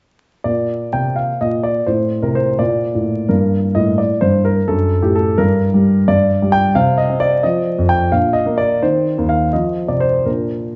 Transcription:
0.44 A#2 A#3 D5
0.93 C3 G5
1.16 F5
1.41 A#2 D#5
1.63 D5
1.86 A2 C4 C5
2.22 C3 A#4
2.35 C5
2.59 A#2 A#3 D5
2.95 A2
3.29 G2 A#3 A#4
3.75 A2 D#5
3.98 D5
4.21 G2 C5
4.45 A#4
4.68 F#2 D4 A4
5.02 A2 G4
5.15 A4
5.38 G2 D4 A#4
5.74 G3
6.08 G2 D4 D5
6.42 G3
6.52 G5
6.75 C3 C4 F5
6.98 D#5
7.09 C4
7.20 D5
7.43 F3 C4 D#5
7.78 F2
7.89 G5
8.12 A#2 D4 F5
8.33 D#5
8.46 A#3
8.58 D5
8.82 D#3 C4 C5
9.18 D#2
9.29 F5
9.53 F3 C4 D#5
9.88 C3 D5
10.00 C5
10.26 A#2 D4 F4 A#4

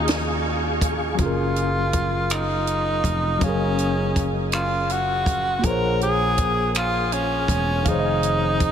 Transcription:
Already playing: D#2 D#3 C#4 D#4 F4 F#4 G#4 F5 G#5 C#6
0.08 snare, closed hi-hat
0.81 kick, closed hi-hat
1.14 F#3 C#4, closed hi-hat
1.19 F#1 F4, kick
1.23 G#4 A#4
1.56 closed hi-hat
1.93 kick, closed hi-hat
2.30 D#4, finger snap, closed hi-hat
2.67 closed hi-hat
3.04 F1, kick, closed hi-hat
3.38 F#1 F#3 C#4, kick, closed hi-hat
3.44 C#4 G#4 F5
3.49 A#4
3.78 closed hi-hat
4.16 kick, closed hi-hat
4.52 F4, finger snap, closed hi-hat
4.90 F#4, closed hi-hat
5.26 kick, closed hi-hat
5.59 A#3 F4
5.64 A#1 G#4 A#4 C5, kick, closed hi-hat
5.70 C#5
6.01 G#4, closed hi-hat
6.38 kick, closed hi-hat
6.75 F4, finger snap, closed hi-hat
7.12 C#4, closed hi-hat
7.48 E1, kick, closed hi-hat
7.82 D#3 F5, kick, closed hi-hat
7.87 F1 D#4 G#4
7.91 C5 C#5
8.00 D#5
8.23 closed hi-hat
8.60 kick, closed hi-hat

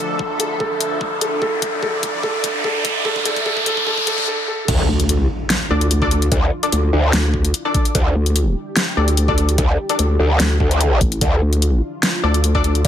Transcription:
Already playing: D3 F3 D4 A4 E5, riser
0.19 kick
0.40 A4, closed hi-hat
0.60 A4, kick
0.81 closed hi-hat
1.01 kick
1.21 A4, closed hi-hat
1.42 A4 D5, kick
1.62 kick, closed hi-hat
1.83 A4, kick
2.03 kick, closed hi-hat
2.23 A4, kick
2.44 kick, closed hi-hat
2.64 A4, kick
2.85 kick, closed hi-hat
3.05 A4, kick
3.16 kick
3.25 A4, kick, closed hi-hat
3.36 kick, closed hi-hat
3.46 A4, kick
3.57 kick
3.66 A4, kick, closed hi-hat
3.77 kick
3.87 A4, kick
3.98 kick
4.07 A4, kick, closed hi-hat
4.18 kick
4.28 A4
4.48 A4
4.68 D2 D4 E4 F4, kick, closed hi-hat, crash, impact
4.89 D2
5.00 closed hi-hat
5.09 closed hi-hat
5.50 snare, closed hi-hat
5.70 D2 D4 A4 D5
5.81 closed hi-hat
5.91 closed hi-hat
6.02 D4 A4 D5, kick
6.11 closed hi-hat
6.22 closed hi-hat
6.32 D2, kick, closed hi-hat
6.63 D4 A4 D5, closed hi-hat
6.72 D2, closed hi-hat
6.93 D2
7.13 D2, snare, closed hi-hat
7.34 kick
7.45 closed hi-hat
7.54 closed hi-hat
7.65 D4 A4 D5
7.74 kick, closed hi-hat
7.85 closed hi-hat
7.95 D2 G4, kick, closed hi-hat
8.15 D2
8.26 closed hi-hat
8.36 closed hi-hat
8.76 snare, closed hi-hat
8.97 D2 D4 A4 D5
9.08 closed hi-hat
9.17 closed hi-hat
9.28 D4 A4 D5, kick
9.38 closed hi-hat
9.49 closed hi-hat
9.58 D2, kick, closed hi-hat
9.89 D4 A4 D5, closed hi-hat
9.99 D2, closed hi-hat
10.19 D2
10.40 D2, snare, closed hi-hat
10.60 D2, kick
10.71 closed hi-hat
10.81 closed hi-hat
11.01 A1, kick, closed hi-hat
11.12 closed hi-hat
11.21 D2 F4, kick, closed hi-hat
11.42 D2
11.53 closed hi-hat
11.62 closed hi-hat
12.03 snare, closed hi-hat
12.23 D2 D4 A4 D5
12.34 closed hi-hat
12.44 closed hi-hat
12.55 D4 A4 D5, kick
12.64 closed hi-hat
12.75 closed hi-hat
12.85 D2, kick, closed hi-hat

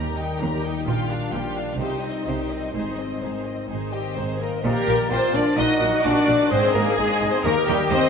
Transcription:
Already playing: D#2 D#3 G3 D#4 G4 A#4 A#5
0.09 A#4
0.16 D#4 G4 G5
0.24 G4
0.38 D#2 F4 G4 A#4 A#5
0.56 G4
0.62 D#4 G5
0.66 G4
0.71 D#4
0.86 A#1 A#2 D4 F4 G4 G5
1.02 F4
1.09 D4 F4 F5
1.18 D5
1.31 A#1 A#2 F4 G4 C5 G5
1.49 D5
1.56 D4 F4 F5
1.65 G3
1.78 C2 C3 D#4 G4 C5
1.96 D#4
2.00 C4 D#4 D#5
2.11 C5
2.26 C2 C3 D#4 G4 A#4 C5
2.43 C5
2.49 C4 D#4 D#5
2.59 G3
2.73 G#1 G#2 G#3 C4 D#4 G#4 C5
2.91 D#4
2.96 C4 C5 D#5
3.06 C5
3.20 G#1 G#2 D#4 G#4 A#4 C5
3.38 C5
3.45 C4 C5 D#5
3.55 G#3
3.69 G#1 G#2 D#3 D#4 G#4 C5
3.86 D#4
3.91 G3 C4 G4 C5 D#5
4.02 C5
4.14 G#1 G#2 C4 D#4 G#4 A#4 C5
4.33 C5
4.39 A#3 C4 A#4 C5 D#5
4.49 G#3
4.63 A#1 A#2 A#3 G4 A#4 D5
4.87 A#1 A#2 F3
5.10 A#1 A#2 C4 F4 A#4 C5
5.33 A#1 A#2 D4 D5
5.57 A#1 A#2 D#4 F#4 A#4 D#5 F#5
5.79 A#1 A#2 F#3 D#4 D#5
6.02 A#1 A#2 D4 A#4 D5
6.27 A#1 A#2 D#4
6.48 G#1 G#2 C4 G#4 C5 D#5
6.73 G#1 G#2 G#3 A#3 A#4
6.96 G#1 G#2 G#3 G#4 D#5
7.21 G#1 G#2 D#4
7.30 C5
7.35 C4
7.42 D#2 D#3 A#3 G4 A#4 D#5
7.46 A#4
7.67 D#2 D#3 D#4 G4
7.71 G3
7.90 D#2 D#3 C4 G4 C5 D#5

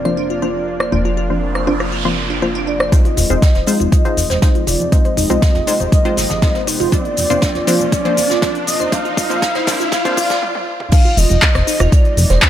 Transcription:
Already playing: F1 C3 F3 A#3 D4 F4 D5
0.05 F3 A#3 C4 D4 F4 C5
0.17 D4
0.30 F4
0.42 F3 A#3 C4 D4 F4 C5
0.80 C5, cross-stick
0.92 F1 F3 A#3 C4 D4 F4 C5, noise sweep
1.05 F4
1.17 F4
1.30 F3 A#3 C4 D4 F4 C5
1.55 C5, cross-stick
1.67 F3 A#3 C4 D4 F4 C5
1.80 F4, cross-stick
1.92 F4
2.05 F3 A#3 C4 D4 F4 C5
2.30 D4
2.42 F3 A#3 C4 D4 F4 C5
2.55 D4
2.67 D4 D5
2.80 C5, cross-stick
2.92 C3 F3 G#3 C4 D#4 F4 C5 D#5, kick, closed hi-hat, riser, cabasa
3.05 F4, closed hi-hat
3.17 F1 F4, closed hi-hat, open hi-hat, cabasa
3.30 F1 G#3 C4 D#4 F4 C5, cabasa
3.42 kick, snare, closed hi-hat, cabasa
3.55 F1 C5, snare, closed hi-hat
3.66 G#3 C4 D#4 F4 C5, closed hi-hat, open hi-hat, cabasa
3.80 F1 F4, closed hi-hat, cabasa
3.92 F4 D#5, kick, closed hi-hat, cabasa
4.05 G#3 C4 D#4 F4 C5, closed hi-hat
4.17 F1, closed hi-hat, open hi-hat, cabasa
4.30 F1 C5, snare, closed hi-hat, cabasa
4.42 G#3 C4 D#4 F4 C5, kick, snare, closed hi-hat, cabasa
4.55 F4, closed hi-hat
4.67 F1 F4 D5, closed hi-hat, open hi-hat, cabasa
4.80 F2, closed hi-hat, cabasa
4.92 G#3 C4 D#4 F4 G4 C5 D#5, kick, closed hi-hat, cabasa
5.05 C5, closed hi-hat
5.17 F1 D#4, closed hi-hat, open hi-hat, cabasa
5.30 C2 G#3 C4 D#4 F4 C5, closed hi-hat, cabasa
5.42 F4, kick, snare, closed hi-hat, cabasa
5.55 F1, snare, closed hi-hat
5.67 G#3 C4 D#4 F4 C5, closed hi-hat, open hi-hat, cabasa
5.80 F1 C5, closed hi-hat, cabasa
5.92 D#4 D#5, kick, closed hi-hat, cabasa
6.05 G#3 C4 D#4 F4 C5, closed hi-hat
6.17 G#1 F4, snare, closed hi-hat, open hi-hat, cabasa
6.30 G#1, snare, closed hi-hat, cabasa
6.42 G#3 C4 D#4 F4 C5, kick, snare, closed hi-hat, cabasa
6.55 C5, snare, closed hi-hat
6.67 F1 D#4 C5, closed hi-hat, open hi-hat, cabasa
6.80 F1 F4, open hi-hat, cabasa
6.92 C3 F3 A#3 C4 D4 F4 C5 D5, kick, closed hi-hat, cabasa
7.05 closed hi-hat
7.17 F1, closed hi-hat, open hi-hat, cabasa
7.30 F1 F3 A#3 C4 D4 F4 C5, closed hi-hat, cabasa
7.42 D4, kick, snare, closed hi-hat, cabasa
7.55 F1 F4, snare, closed hi-hat
7.67 F3 A#3 C4 D4 F4 C5, closed hi-hat, open hi-hat, cabasa
7.80 F1, closed hi-hat, cabasa
7.92 D5, kick, closed hi-hat, cabasa
8.05 F3 A#3 C4 D4 F4 C5, closed hi-hat
8.17 F1 D4, closed hi-hat, open hi-hat, cabasa
8.30 F1 F4, snare, closed hi-hat, cabasa
8.42 F3 A#3 C4 D4 F4 C5, kick, snare, closed hi-hat, cabasa
8.55 closed hi-hat
8.67 F1 D#5, closed hi-hat, open hi-hat, cabasa
8.80 F2 C5, cabasa
8.92 F3 A#3 C4 D4 F4 C5 F5, kick, closed hi-hat, cabasa
9.05 F4, closed hi-hat
9.17 F1 F4, kick, closed hi-hat, open hi-hat, cabasa
9.30 C2 F3 A#3 C4 D4 F4 C5, closed hi-hat, cabasa
9.42 kick, snare, closed hi-hat, cabasa
9.55 F1 C5, snare, closed hi-hat
9.67 F3 A#3 C4 D4 F4 C5, kick, snare, closed hi-hat, open hi-hat, cabasa
9.80 F1 F4, snare, closed hi-hat, cabasa
9.92 F4 F5, kick, snare, closed hi-hat, cabasa
10.05 F3 A#3 C4 D4 F4 C5, kick, closed hi-hat, cabasa
10.17 G#1 D5, kick, closed hi-hat, open hi-hat, cabasa
10.30 G#1 D5, kick, snare, closed hi-hat, cabasa
10.42 high tom
10.55 high tom
10.80 mid tom
10.91 C3 F3 G#3 D#4 F4 F5, kick, closed hi-hat, crash, cabasa
11.05 F4
11.17 F1 F4 D#5, closed hi-hat, open hi-hat, cabasa
11.30 F1, closed hi-hat, cabasa
11.42 kick, snare, clap, closed hi-hat, cabasa
11.55 F1 C5, cross-stick, snare, closed hi-hat
11.67 D#4, closed hi-hat, open hi-hat, cabasa
11.80 F1 F4, cross-stick, closed hi-hat, cabasa
11.92 F4 D5, kick, closed hi-hat, cabasa
12.05 closed hi-hat
12.17 F1, closed hi-hat, open hi-hat, cabasa
12.30 F1 C5, snare, cabasa
12.42 D#4 C5, kick, snare, clap, closed hi-hat, cabasa

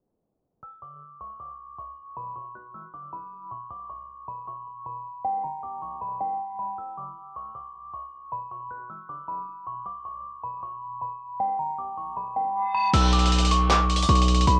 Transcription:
0.63 E6
0.82 D6
1.21 C#6
1.40 D6
1.78 C#6
2.17 B5
2.36 C#6
2.55 F#6
2.74 E6
2.94 D6
3.13 B5
3.51 C#6
3.71 D6
3.90 C#6
4.28 B5
4.48 C#6
4.86 B5
5.24 G5
5.44 A#5
5.63 D6
5.82 C#6
6.01 B5
6.21 G5
6.59 B5
6.78 E6
6.97 D6
7.36 C#6
7.55 D6
7.93 C#6
8.32 B5
8.51 C#6
8.71 F#6
8.90 E6
9.09 D6
9.28 B5
9.67 C#6
9.86 D6
10.05 C#6
10.44 B5
10.63 C#6
11.01 B5
11.40 G5
11.59 A#5
11.78 D6
11.97 C#6
12.17 B5
12.36 G5
12.74 B5
12.94 B1 E6, closed hi-hat, crash
13.13 D6, closed hi-hat, open hi-hat
13.19 closed hi-hat
13.26 closed hi-hat
13.32 closed hi-hat
13.38 closed hi-hat
13.45 closed hi-hat
13.51 C#6, closed hi-hat
13.70 D6, clap, closed hi-hat
13.90 closed hi-hat
13.96 closed hi-hat
14.02 closed hi-hat
14.09 B1 C#6, closed hi-hat
14.15 closed hi-hat
14.22 closed hi-hat
14.28 closed hi-hat
14.35 closed hi-hat
14.41 closed hi-hat
14.47 B1 B5, closed hi-hat

